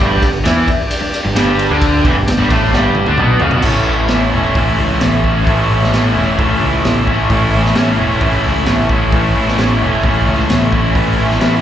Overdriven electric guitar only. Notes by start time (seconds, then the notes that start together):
Already playing: G2
0.00 G3
0.23 G2
0.44 E3 E4
0.69 muted overdriven electric guitar stroke
1.01 muted overdriven electric guitar stroke
1.25 G2
1.35 G2 G3
1.70 D3 D4
2.04 E2 E3
2.16 G2
2.38 G2 G3
2.49 A2 A3
2.72 G2 G3
3.06 D3 D4
3.18 B2 B3
3.41 C#3 C#4
3.52 B2 B3
3.63 A2 E3 A3
3.67 C#4 E4
3.86 C#4 E4
3.91 A3
4.10 E3 A3 C#4
4.14 E4
4.32 C#4 E4
4.37 A3
4.55 A2 E3 A3 C#4
4.59 E4
4.78 A3 C#4 E4
5.24 C#4 E4
5.28 A3
5.46 A2 E3 A3 C#4
5.50 E4
5.69 C#4 E4
5.74 A3
5.93 E3 A3 C#4
5.98 E4
6.15 C#4 E4
6.20 A3
6.37 A2 E3 A3 C#4
6.42 E4
6.61 C#4 E4
6.66 A3
7.06 C#4 E4
7.11 A3
7.29 A2 E3 A3 C#4
7.34 E4
7.51 C#4 E4
7.56 A3
7.75 E3 A3 C#4
7.80 E4
7.97 C#4 E4
8.01 A3
8.20 A2 E3 A3 C#4
8.25 E4
8.44 C#4 E4
8.49 A3
8.90 C#4 E4
8.94 A3
9.12 A2 E3 A3
9.16 C#4 E4
9.35 C#4 E4
9.40 A3
9.57 E3 A3 C#4
9.62 E4
9.81 C#4 E4
9.86 A3
10.03 A2 E3 A3 C#4
10.08 E4
10.26 C#4 E4
10.31 A3
10.71 C#4 E4
10.76 A3
10.94 A2 E3 A3 C#4
10.99 E4
11.16 C#4 E4
11.21 A3
11.38 E3 A3 C#4
11.43 E4